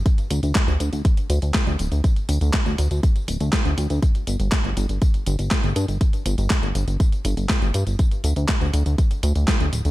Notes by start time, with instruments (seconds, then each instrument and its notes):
0.06 kick, closed hi-hat, tambourine
0.18 closed hi-hat, tambourine
0.31 analog synth bass D2, closed hi-hat, tambourine
0.43 analog synth bass D2, closed hi-hat, tambourine
0.55 kick, snare, clap, closed hi-hat, tambourine
0.68 analog synth bass D2, closed hi-hat, tambourine
0.80 analog synth bass D2, closed hi-hat, tambourine
0.93 analog synth bass D2, closed hi-hat, tambourine
1.05 kick, closed hi-hat, tambourine
1.17 closed hi-hat, tambourine
1.30 analog synth bass D2, closed hi-hat, tambourine
1.42 analog synth bass D2, closed hi-hat, tambourine
1.54 kick, snare, clap, closed hi-hat, tambourine
1.67 analog synth bass D2, closed hi-hat, tambourine
1.79 analog synth bass D1, closed hi-hat, tambourine
1.92 analog synth bass D2, closed hi-hat, tambourine
2.04 kick, closed hi-hat, tambourine
2.16 closed hi-hat, tambourine
2.29 analog synth bass D2, closed hi-hat, tambourine
2.41 analog synth bass D2, closed hi-hat, tambourine
2.54 kick, snare, clap, closed hi-hat, tambourine
2.66 analog synth bass D2, closed hi-hat, tambourine
2.78 analog synth bass D2, closed hi-hat, tambourine
2.91 analog synth bass D2, closed hi-hat, tambourine
3.03 kick, closed hi-hat, tambourine
3.16 closed hi-hat, tambourine
3.28 analog synth bass D1, closed hi-hat, tambourine
3.40 analog synth bass D2, closed hi-hat, tambourine
3.53 kick, snare, clap, closed hi-hat, tambourine
3.65 analog synth bass D2, closed hi-hat, tambourine
3.78 analog synth bass D2, closed hi-hat, tambourine
3.90 analog synth bass D2, closed hi-hat, tambourine
4.02 kick, closed hi-hat, tambourine
4.15 closed hi-hat, tambourine
4.27 analog synth bass G1, closed hi-hat, tambourine
4.40 analog synth bass G1, closed hi-hat, tambourine
4.52 kick, snare, clap, closed hi-hat, tambourine
4.64 analog synth bass G1, closed hi-hat, tambourine
4.77 analog synth bass G1, closed hi-hat, tambourine
4.89 analog synth bass G1, closed hi-hat, tambourine
5.02 kick, closed hi-hat, tambourine
5.14 closed hi-hat, tambourine
5.26 analog synth bass G1, closed hi-hat, tambourine
5.39 analog synth bass G1, closed hi-hat, tambourine
5.51 kick, snare, clap, closed hi-hat, tambourine
5.64 analog synth bass G1, closed hi-hat, tambourine
5.76 analog synth bass G2, closed hi-hat, tambourine
5.88 analog synth bass G1, closed hi-hat, tambourine
6.01 kick, closed hi-hat, tambourine
6.13 closed hi-hat, tambourine
6.26 analog synth bass G1, closed hi-hat, tambourine
6.38 analog synth bass G1, closed hi-hat, tambourine
6.50 kick, snare, clap, closed hi-hat, tambourine
6.63 analog synth bass G1, closed hi-hat, tambourine
6.75 analog synth bass G1, closed hi-hat, tambourine
6.88 analog synth bass G1, closed hi-hat, tambourine
7.00 kick, closed hi-hat, tambourine
7.12 closed hi-hat, tambourine
7.25 analog synth bass G1, closed hi-hat, tambourine
7.37 analog synth bass G1, closed hi-hat, tambourine
7.50 kick, snare, clap, closed hi-hat, tambourine
7.62 analog synth bass G1, closed hi-hat, tambourine
7.74 analog synth bass G2, closed hi-hat, tambourine
7.87 analog synth bass G1, closed hi-hat, tambourine
7.99 kick, closed hi-hat, tambourine
8.11 closed hi-hat, tambourine
8.24 analog synth bass D2, closed hi-hat, tambourine
8.36 analog synth bass D2, closed hi-hat, tambourine
8.49 kick, snare, clap, closed hi-hat, tambourine
8.61 analog synth bass D2, closed hi-hat, tambourine
8.74 analog synth bass D2, closed hi-hat, tambourine
8.86 analog synth bass D2, closed hi-hat, tambourine
8.98 kick, closed hi-hat, tambourine
9.11 closed hi-hat, tambourine
9.23 analog synth bass D2, closed hi-hat, tambourine
9.35 analog synth bass D2, closed hi-hat, tambourine
9.48 kick, snare, clap, closed hi-hat, tambourine
9.60 analog synth bass D2, closed hi-hat, tambourine
9.73 analog synth bass D1, closed hi-hat, tambourine
9.85 analog synth bass D2, closed hi-hat, tambourine